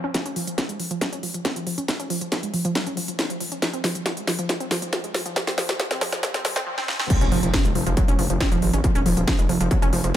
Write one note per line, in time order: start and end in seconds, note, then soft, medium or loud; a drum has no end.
0.04 0.08 C#4 medium
0.14 0.21 F3 medium
0.14 kick loud
0.14 snare soft
0.14 closed hi-hat medium
0.26 0.32 C#4 loud
0.26 closed hi-hat medium
0.36 0.46 F3 loud
0.36 open hi-hat loud
0.47 0.54 F3 medium
0.47 closed hi-hat medium
0.58 0.62 F3 medium
0.58 kick loud
0.58 snare soft
0.58 closed hi-hat medium
0.69 0.76 G#3 medium
0.69 closed hi-hat medium
0.80 0.90 F3 medium
0.80 open hi-hat loud
0.91 1.00 F3 loud
0.91 closed hi-hat medium
1.01 1.05 F#3 loud
1.01 kick loud
1.01 snare medium
1.01 closed hi-hat medium
1.13 1.19 C#4 loud
1.13 closed hi-hat medium
1.23 1.30 F3 medium
1.23 open hi-hat loud
1.34 1.41 F3 medium
1.34 closed hi-hat medium
1.45 1.55 C4 loud
1.45 kick loud
1.45 snare medium
1.45 closed hi-hat medium
1.56 1.62 F3 loud
1.56 closed hi-hat medium
1.67 1.77 F3 medium
1.67 open hi-hat loud
1.78 1.82 C#4 medium
1.78 closed hi-hat medium
1.88 1.95 F3 medium
1.88 kick loud
1.88 snare medium
1.88 closed hi-hat medium
2.00 2.06 C#4 loud
2.00 closed hi-hat medium
2.10 2.20 F3 loud
2.10 open hi-hat loud
2.21 2.28 F3 medium
2.21 closed hi-hat medium
2.32 2.36 F3 medium
2.32 kick loud
2.32 snare medium
2.32 closed hi-hat medium
2.43 2.49 G#3 medium
2.43 closed hi-hat medium
2.54 2.64 F3 medium
2.54 open hi-hat loud
2.65 2.74 F3 loud
2.65 closed hi-hat medium
2.75 2.79 F#3 loud
2.75 kick loud
2.75 snare medium
2.75 closed hi-hat medium
2.87 2.93 C#4 loud
2.87 closed hi-hat medium
2.97 3.04 F3 medium
2.97 open hi-hat loud
3.08 3.15 F3 medium
3.08 closed hi-hat medium
3.19 3.29 C4 loud
3.19 kick loud
3.19 snare medium
3.19 closed hi-hat medium
3.30 3.36 F3 loud
3.30 closed hi-hat medium
3.40 3.51 F3 medium
3.40 open hi-hat loud
3.52 3.56 C#4 medium
3.52 closed hi-hat medium
3.62 3.69 F3 medium
3.62 kick loud
3.62 snare medium
3.62 closed hi-hat medium
3.73 3.80 C4 loud
3.73 closed hi-hat medium
3.84 3.94 F3 medium
3.84 snare medium
3.84 open hi-hat loud
3.95 4.02 F3 medium
3.95 closed hi-hat medium
4.06 4.10 F3 medium
4.06 kick loud
4.06 snare medium
4.06 closed hi-hat medium
4.17 4.23 G#3 medium
4.17 closed hi-hat medium
4.27 4.37 F3 medium
4.27 snare medium
4.27 open hi-hat loud
4.39 4.48 F3 medium
4.39 closed hi-hat medium
4.49 4.56 F3 medium
4.49 kick loud
4.49 snare medium
4.49 closed hi-hat medium
4.60 4.67 C4 loud
4.60 closed hi-hat medium
4.71 4.81 F3 loud
4.71 snare medium
4.71 open hi-hat loud
4.82 4.89 F3 medium
4.82 closed hi-hat medium
4.93 4.97 F3 medium
4.93 kick loud
4.93 snare medium
4.93 closed hi-hat medium
5.04 5.10 G#3 medium
5.04 closed hi-hat medium
5.14 5.24 F3 medium
5.14 snare medium
5.14 open hi-hat loud
5.26 5.34 F3 loud
5.26 closed hi-hat medium
5.36 5.43 F3 medium
5.36 kick loud
5.36 snare medium
5.36 closed hi-hat medium
5.47 5.54 C4 loud
5.47 snare medium
5.47 closed hi-hat medium
5.58 5.68 F3 loud
5.58 snare loud
5.58 open hi-hat loud
5.69 5.76 F3 medium
5.69 snare medium
5.69 closed hi-hat medium
5.80 5.86 F3 medium
5.80 kick loud
5.80 snare loud
5.80 closed hi-hat medium
5.91 5.97 C4 loud
5.91 snare medium
5.91 closed hi-hat medium
6.01 6.11 F3 loud
6.01 snare loud
6.01 open hi-hat loud
6.12 6.19 F3 medium
6.12 snare medium
6.12 closed hi-hat medium
6.23 6.30 F3 medium
6.23 kick loud
6.23 snare loud
6.23 closed hi-hat medium
6.34 6.41 C4 loud
6.34 snare medium
6.34 closed hi-hat medium
6.45 6.52 F3 medium
6.45 snare loud
6.45 open hi-hat loud
6.56 6.62 C4 loud
6.56 snare medium
6.56 closed hi-hat medium
6.67 6.73 F3 medium
6.78 6.84 C4 loud
6.78 snare medium
6.88 6.95 F3 medium
6.88 snare medium
7.00 7.06 C4 loud
7.00 snare medium
7.10 7.17 F3 medium
7.10 kick loud
7.10 closed hi-hat medium
7.10 crash loud
7.10 impact medium
7.21 7.30 F1 medium
7.21 7.28 C#4 loud
7.21 closed hi-hat medium
7.32 7.41 F1 loud
7.32 7.42 F3 loud
7.32 open hi-hat loud
7.43 7.51 F1 medium
7.43 7.49 F3 medium
7.43 closed hi-hat medium
7.54 7.58 F3 medium
7.54 kick loud
7.54 snare loud
7.54 closed hi-hat medium
7.65 7.73 F1 medium
7.65 7.71 G#3 medium
7.65 closed hi-hat medium
7.75 7.84 F1 medium
7.75 7.85 F3 medium
7.75 open hi-hat loud
7.86 7.95 F1 medium
7.86 7.96 F3 loud
7.86 closed hi-hat medium
7.97 8.01 F#3 loud
7.97 kick loud
7.97 closed hi-hat medium
8.08 8.16 F1 medium
8.08 8.15 C#4 loud
8.08 closed hi-hat medium
8.19 8.28 F1 loud
8.19 8.26 F3 medium
8.19 open hi-hat loud
8.30 8.38 F1 medium
8.30 8.36 F3 medium
8.30 closed hi-hat medium
8.41 8.51 C4 loud
8.41 kick loud
8.41 snare loud
8.41 closed hi-hat medium
8.52 8.60 D#1 medium
8.52 8.58 F3 loud
8.52 closed hi-hat medium
8.62 8.71 G#1 loud
8.62 8.73 F3 medium
8.62 open hi-hat loud
8.73 8.82 G#1 medium
8.73 8.77 C#4 medium
8.73 closed hi-hat medium
8.84 8.91 F3 medium
8.84 kick loud
8.84 closed hi-hat medium
8.95 9.04 D#1 medium
8.95 9.02 C#4 loud
8.95 closed hi-hat medium
9.06 9.15 D#1 loud
9.06 9.16 F3 loud
9.06 open hi-hat loud
9.17 9.25 D#1 medium
9.17 9.23 F3 medium
9.17 closed hi-hat medium
9.27 9.32 F3 medium
9.27 kick loud
9.27 snare loud
9.27 closed hi-hat medium
9.39 9.47 F1 medium
9.39 9.45 G#3 medium
9.39 closed hi-hat medium
9.49 9.58 F1 loud
9.49 9.59 F3 medium
9.49 open hi-hat loud
9.61 9.69 F1 medium
9.61 9.70 F3 loud
9.61 closed hi-hat medium
9.71 9.75 F#3 loud
9.71 kick loud
9.71 closed hi-hat medium
9.82 9.90 F1 medium
9.82 9.89 C#4 loud
9.82 closed hi-hat medium
9.93 10.02 F1 loud
9.93 10.00 F3 medium
9.93 open hi-hat loud
10.04 10.12 F1 medium
10.04 10.10 F3 medium
10.04 closed hi-hat medium